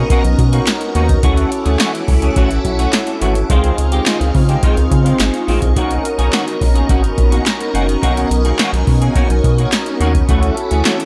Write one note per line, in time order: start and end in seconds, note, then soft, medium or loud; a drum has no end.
0.00 1.20 B3 medium
0.00 0.10 C#4 medium
0.00 1.19 C#4 medium
0.00 1.20 D#4 medium
0.00 1.20 F#4 medium
0.00 0.11 G#4 medium
0.00 1.20 A#4 medium
0.00 1.20 D#5 medium
0.00 1.20 A#5 medium
0.00 1.20 C#6 medium
0.10 0.32 D#3 medium
0.10 0.24 A#3 medium
0.10 0.24 C#4 medium
0.10 0.23 F#4 medium
0.10 kick loud
0.10 closed hi-hat medium
0.24 0.35 B1 loud
0.24 muted clean electric guitar stroke soft
0.24 closed hi-hat medium
0.38 0.61 B2 loud
0.38 muted clean electric guitar stroke soft
0.38 kick medium
0.38 closed hi-hat medium
0.52 0.66 D#3 medium
0.52 0.66 A#3 medium
0.52 0.66 C#4 medium
0.52 0.66 F#4 medium
0.52 closed hi-hat medium
0.67 muted clean electric guitar stroke soft
0.67 snare loud
0.67 clap medium
0.67 closed hi-hat medium
0.81 muted clean electric guitar stroke soft
0.81 closed hi-hat soft
0.95 1.17 D#2 loud
0.95 1.17 D#3 medium
0.95 1.09 A#3 medium
0.95 1.08 C#4 medium
0.95 1.08 F#4 medium
0.95 closed hi-hat medium
1.09 muted clean electric guitar stroke medium
1.09 kick medium
1.09 closed hi-hat medium
1.23 1.46 D2 loud
1.23 1.49 E3 medium
1.23 1.49 A3 medium
1.23 3.46 C#4 medium
1.23 1.50 C#4 medium
1.23 3.48 C#4 medium
1.23 3.46 E4 medium
1.23 3.46 F#4 medium
1.23 1.50 F#4 medium
1.23 3.46 A4 medium
1.23 3.48 E5 medium
1.23 3.48 F#5 medium
1.23 3.48 D6 medium
1.23 kick loud
1.23 closed hi-hat medium
1.37 closed hi-hat medium
1.52 muted clean electric guitar stroke soft
1.52 closed hi-hat medium
1.65 1.77 D2 loud
1.65 1.78 E3 medium
1.65 1.78 A3 medium
1.65 1.79 C#4 medium
1.65 1.80 G#4 medium
1.65 closed hi-hat medium
1.79 2.01 E3 medium
1.79 1.93 A3 medium
1.79 1.93 C#4 loud
1.79 1.93 F#4 loud
1.79 snare loud
1.79 clap medium
1.79 closed hi-hat medium
1.94 muted clean electric guitar stroke soft
1.94 closed hi-hat medium
2.08 2.30 C#2 medium
2.08 muted clean electric guitar stroke soft
2.08 kick medium
2.08 open hi-hat medium
2.22 2.35 E3 medium
2.22 2.36 A3 medium
2.22 2.36 C#4 medium
2.22 2.37 G#4 medium
2.22 closed hi-hat medium
2.36 2.59 A1 loud
2.36 2.58 E3 medium
2.36 2.50 A3 medium
2.36 2.50 C#4 medium
2.36 2.50 F#4 loud
2.36 kick loud
2.36 closed hi-hat medium
2.51 muted clean electric guitar stroke soft
2.51 closed hi-hat soft
2.65 2.87 B1 loud
2.65 muted clean electric guitar stroke soft
2.65 kick medium
2.65 closed hi-hat medium
2.79 2.92 E3 soft
2.79 2.92 A3 medium
2.79 2.92 C#4 medium
2.79 2.93 F#4 medium
2.79 closed hi-hat medium
2.93 muted clean electric guitar stroke soft
2.93 snare loud
2.93 clap medium
2.93 closed hi-hat medium
3.07 muted clean electric guitar stroke medium
3.07 closed hi-hat soft
3.21 3.44 G#1 medium
3.21 3.43 E3 medium
3.21 3.35 A3 medium
3.21 3.35 C#4 medium
3.21 3.34 F#4 medium
3.21 closed hi-hat medium
3.35 muted clean electric guitar stroke soft
3.35 closed hi-hat medium
3.49 3.72 C#2 loud
3.49 3.76 D#3 medium
3.49 3.76 G#3 medium
3.49 5.74 C4 medium
3.49 5.72 C4 medium
3.49 3.76 C4 medium
3.49 5.72 D#4 medium
3.49 5.73 F4 medium
3.49 3.76 F4 medium
3.49 5.73 G#4 medium
3.49 10.25 D#5 medium
3.49 5.74 F5 medium
3.49 10.25 C#6 medium
3.49 kick loud
3.49 closed hi-hat medium
3.64 closed hi-hat medium
3.78 4.00 C#2 medium
3.78 muted clean electric guitar stroke soft
3.78 closed hi-hat medium
3.92 4.05 D#3 medium
3.92 4.05 G#3 medium
3.92 4.06 C4 medium
3.92 4.07 G4 medium
3.92 closed hi-hat medium
4.06 4.28 D#3 medium
4.06 4.20 G#3 medium
4.06 4.19 C4 medium
4.06 4.19 F4 medium
4.06 snare loud
4.06 clap medium
4.06 closed hi-hat loud
4.20 4.32 C#2 loud
4.20 muted clean electric guitar stroke soft
4.20 closed hi-hat medium
4.34 4.57 C#3 loud
4.34 muted clean electric guitar stroke soft
4.34 kick loud
4.34 open hi-hat medium
4.49 4.62 D#3 medium
4.49 4.62 G#3 medium
4.49 4.63 C4 medium
4.49 4.64 G4 medium
4.49 closed hi-hat medium
4.63 4.85 D#3 medium
4.63 4.77 G#3 medium
4.63 4.76 C4 medium
4.63 4.76 F4 medium
4.63 kick loud
4.63 closed hi-hat medium
4.77 4.88 C#2 loud
4.77 muted clean electric guitar stroke soft
4.77 closed hi-hat soft
4.91 5.14 C#3 loud
4.91 muted clean electric guitar stroke soft
4.91 kick medium
4.91 closed hi-hat medium
5.05 5.18 D#3 medium
5.05 5.18 G#3 medium
5.05 5.19 C4 medium
5.05 5.19 F4 medium
5.05 closed hi-hat medium
5.19 5.31 G#1 medium
5.19 snare loud
5.19 clap medium
5.19 closed hi-hat loud
5.33 muted clean electric guitar stroke soft
5.33 closed hi-hat soft
5.47 5.59 A#1 medium
5.47 5.69 D#3 medium
5.47 5.62 G#3 medium
5.47 5.61 C4 medium
5.47 5.61 F4 medium
5.47 open hi-hat medium
5.62 5.73 C2 medium
5.62 muted clean electric guitar stroke soft
5.62 kick medium
5.62 closed hi-hat medium
5.76 5.98 B1 loud
5.76 6.02 D#3 medium
5.76 6.02 A#3 medium
5.76 10.25 B3 medium
5.76 10.25 C#4 medium
5.76 6.03 C#4 medium
5.76 10.25 D#4 medium
5.76 10.25 F#4 medium
5.76 6.03 F#4 medium
5.76 10.26 A#4 medium
5.76 8.01 A#5 medium
5.76 kick loud
5.76 closed hi-hat medium
5.91 closed hi-hat medium
6.05 muted clean electric guitar stroke soft
6.05 closed hi-hat medium
6.18 6.30 B1 medium
6.18 6.31 D#3 medium
6.18 6.32 A#3 medium
6.18 6.32 C#4 medium
6.18 6.33 G#4 medium
6.18 closed hi-hat medium
6.32 6.54 D#3 medium
6.32 6.47 A#3 medium
6.32 6.46 C#4 medium
6.32 6.46 F#4 medium
6.32 snare loud
6.32 clap loud
6.32 closed hi-hat medium
6.47 muted clean electric guitar stroke soft
6.47 closed hi-hat medium
6.61 6.83 A#1 medium
6.61 muted clean electric guitar stroke soft
6.61 kick medium
6.61 open hi-hat medium
6.75 6.88 D#3 soft
6.75 6.89 A#3 medium
6.75 6.89 C#4 medium
6.75 6.90 G#4 medium
6.75 closed hi-hat medium
6.89 7.12 G#1 medium
6.89 7.11 D#3 medium
6.89 7.03 A#3 medium
6.89 7.03 C#4 medium
6.89 7.02 F#4 medium
6.89 kick loud
6.89 closed hi-hat medium
7.04 muted clean electric guitar stroke soft
7.04 closed hi-hat soft
7.17 7.40 A#1 medium
7.17 muted clean electric guitar stroke soft
7.17 kick medium
7.17 closed hi-hat medium
7.32 7.44 D#3 medium
7.32 7.45 A#3 medium
7.32 7.45 C#4 medium
7.32 7.45 F#4 medium
7.32 closed hi-hat medium
7.46 snare loud
7.46 clap medium
7.46 closed hi-hat medium
7.60 muted clean electric guitar stroke medium
7.60 closed hi-hat soft
7.74 7.96 F#1 medium
7.74 7.96 D#3 medium
7.74 7.88 A#3 medium
7.74 7.87 C#4 medium
7.74 7.87 F#4 medium
7.74 closed hi-hat medium
7.88 muted clean electric guitar stroke soft
7.88 closed hi-hat medium
8.02 8.25 B1 loud
8.02 8.28 D#3 medium
8.02 8.29 A#3 medium
8.02 8.29 C#4 medium
8.02 8.29 F#4 loud
8.02 10.27 G#5 medium
8.02 kick loud
8.02 closed hi-hat medium
8.17 closed hi-hat medium
8.30 8.53 B1 loud
8.30 muted clean electric guitar stroke soft
8.30 closed hi-hat medium
8.45 8.58 D#3 medium
8.45 8.58 A#3 medium
8.45 8.58 C#4 medium
8.45 8.60 G#4 medium
8.45 closed hi-hat medium
8.59 8.81 D#3 medium
8.59 8.73 A#3 loud
8.59 8.72 C#4 medium
8.59 8.72 F#4 loud
8.59 snare loud
8.59 clap medium
8.59 closed hi-hat medium
8.73 8.84 B1 loud
8.73 muted clean electric guitar stroke soft
8.73 closed hi-hat medium
8.87 9.10 B2 medium
8.87 muted clean electric guitar stroke soft
8.87 kick medium
8.87 open hi-hat medium
9.01 9.14 D#3 soft
9.01 9.14 A#3 medium
9.01 9.15 C#4 medium
9.01 9.16 G#4 medium
9.01 closed hi-hat medium
9.15 9.37 D#3 medium
9.15 9.29 A#3 medium
9.15 9.29 C#4 loud
9.15 9.28 F#4 medium
9.15 kick loud
9.15 closed hi-hat medium
9.30 9.41 B1 medium
9.30 muted clean electric guitar stroke soft
9.30 closed hi-hat medium
9.44 9.66 B2 loud
9.44 muted clean electric guitar stroke soft
9.44 kick medium
9.44 closed hi-hat medium
9.58 9.71 D#3 medium
9.58 9.72 A#3 medium
9.58 9.72 C#4 medium
9.58 9.72 F#4 medium
9.58 closed hi-hat medium
9.72 snare loud
9.72 clap medium
9.72 closed hi-hat medium
9.86 muted clean electric guitar stroke soft
9.86 closed hi-hat soft
10.00 10.23 D#2 medium
10.00 10.22 D#3 medium
10.00 10.14 A#3 medium
10.00 10.14 C#4 medium
10.00 10.13 F#4 medium
10.00 closed hi-hat medium
10.15 muted clean electric guitar stroke soft
10.15 kick medium
10.15 closed hi-hat medium
10.28 10.51 D2 loud
10.28 10.55 E3 medium
10.28 10.55 A3 medium
10.28 11.05 C#4 medium
10.28 10.55 C#4 medium
10.28 11.05 E4 medium
10.28 10.55 F#4 medium
10.28 11.05 F#4 medium
10.28 11.05 A4 medium
10.28 11.05 E5 medium
10.28 11.05 F#5 medium
10.28 11.05 D6 medium
10.28 kick loud
10.28 closed hi-hat medium
10.43 closed hi-hat medium
10.57 muted clean electric guitar stroke soft
10.57 closed hi-hat medium
10.71 10.83 D2 medium
10.71 10.84 E3 medium
10.71 10.84 A3 medium
10.71 10.85 C#4 medium
10.71 10.86 G#4 medium
10.71 closed hi-hat medium
10.85 11.05 E3 medium
10.85 10.99 A3 medium
10.85 10.99 C#4 medium
10.85 10.98 F#4 medium
10.85 snare loud
10.85 clap loud
10.85 closed hi-hat medium
10.99 muted clean electric guitar stroke soft
10.99 closed hi-hat medium